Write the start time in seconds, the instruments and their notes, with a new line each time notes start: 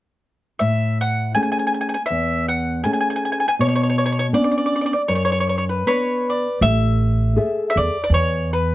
0.59 nylon-string guitar A2, mandolin E5
1.01 mandolin F#5
1.35 nylon-string guitar A3 C#4 G#4, mandolin G#5
1.43 mandolin G#5
1.52 mandolin G#5
1.59 mandolin G#5
1.67 mandolin G#5
1.74 mandolin G#5
1.81 mandolin G#5
1.89 mandolin G#5
1.94 mandolin G#5
2.06 mandolin E5
2.10 nylon-string guitar E2
2.48 mandolin F#5
2.84 nylon-string guitar A3 C#4 G#4, mandolin G#5
2.93 mandolin G#5
3.01 mandolin G#5
3.10 mandolin G#5
3.16 mandolin G#5
3.25 mandolin G#5
3.32 mandolin G#5
3.40 mandolin G#5
3.48 mandolin G#5
3.59 nylon-string guitar B2, mandolin C#5
3.68 mandolin C#5
3.76 mandolin C#5
3.83 mandolin C#5
3.90 mandolin C#5
3.98 mandolin C#5
4.06 mandolin C#5
4.12 mandolin C#5
4.19 mandolin C#5
4.33 nylon-string guitar B3 C#4 D4, mandolin D5
4.44 mandolin D5
4.52 mandolin D5
4.58 mandolin D5
4.66 mandolin D5
4.76 mandolin D5
4.81 mandolin D5
4.86 mandolin D5
4.93 mandolin D5
5.08 nylon-string guitar F#2, mandolin C#5
5.15 mandolin C#5
5.25 mandolin C#5
5.32 mandolin C#5
5.40 mandolin C#5
5.49 mandolin C#5
5.58 mandolin C#5
5.69 mandolin B4
5.86 nylon-string guitar B3 D4, mandolin B4 C#5
6.30 mandolin D5
6.61 upright bass A1, nylon-string guitar A3, mandolin E5
7.36 nylon-string guitar G#4 A4 E5
7.70 mandolin E5
7.76 upright bass E2, mandolin D5
8.04 mandolin D5
8.10 upright bass E2, nylon-string guitar E3
8.14 mandolin C#5
8.53 mandolin B4